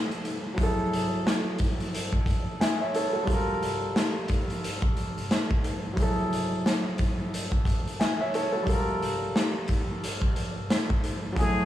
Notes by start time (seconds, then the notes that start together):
Already playing: G3 F4 A4 A#4
0.11 closed hi-hat
0.25 closed hi-hat
0.54 F#3 E4
0.58 G#4, kick, closed hi-hat
0.63 A4
0.93 closed hi-hat
1.27 snare, closed hi-hat
1.59 kick, closed hi-hat
1.80 closed hi-hat
1.95 closed hi-hat
2.13 kick
2.26 kick, closed hi-hat
2.60 E5 G#5, snare, closed hi-hat
2.81 C#5 E5
2.94 A4 C#5, closed hi-hat
3.13 F#4 A4
3.23 G3 F4, kick
3.28 A4, closed hi-hat
3.33 A#4
3.63 closed hi-hat
3.96 snare, closed hi-hat
4.28 kick, closed hi-hat
4.50 closed hi-hat
4.64 closed hi-hat
4.82 kick
4.97 closed hi-hat
5.18 closed hi-hat
5.31 snare, closed hi-hat
5.51 kick
5.64 closed hi-hat
5.93 F#3 E4
5.97 G#4, kick, closed hi-hat
6.02 A4
6.33 closed hi-hat
6.66 snare, closed hi-hat
6.98 kick, closed hi-hat
7.34 closed hi-hat
7.52 kick
7.65 kick, closed hi-hat
7.87 closed hi-hat
8.00 E5 G#5, snare, closed hi-hat
8.20 C#5 E5
8.34 A4 C#5, closed hi-hat
8.52 F#4 A4
8.63 G3 F4, kick
8.68 A4, closed hi-hat
8.72 A#4
9.02 closed hi-hat
9.36 snare, closed hi-hat
9.68 kick, closed hi-hat
10.04 closed hi-hat
10.22 kick
10.36 closed hi-hat
10.70 snare, closed hi-hat
10.90 kick
11.04 closed hi-hat
11.32 F#3 E4
11.36 F#4 G#4, kick, closed hi-hat
11.41 A3